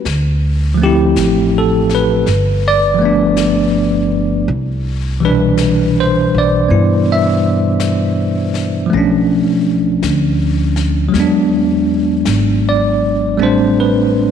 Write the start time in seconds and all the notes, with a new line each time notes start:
0.05 D2, brush sweep, snare
0.74 F3 A3
0.82 C4 E4 G4
1.16 A1, brush sweep, snare, hi-hat pedal
1.58 A4
1.89 snare
1.95 B4
2.26 G1, brush sweep, snare
2.68 D5
2.94 F3
2.99 A3 B3
3.05 D4
3.37 brush sweep, snare, hi-hat pedal
4.47 C2, brush sweep
5.20 B2 E3 G3
5.25 D4 B4
5.57 brush sweep, snare, hi-hat pedal
6.00 C5
6.34 B1 D5
6.68 G2 B3 E4, brush sweep
7.12 E5
7.80 brush sweep, snare, hi-hat pedal
8.54 snare
8.86 F3 A3
8.91 B1 C#4, brush sweep
8.97 D4
10.02 D2, brush sweep, snare, hi-hat pedal
10.76 snare
11.09 F#3 G#3
11.14 E2 B3, brush sweep, snare
11.20 D4
12.25 G#1, brush sweep, snare, hi-hat pedal
12.69 D5
13.37 A1 G3 A3 C4, brush sweep
13.42 D4 C5
13.80 B4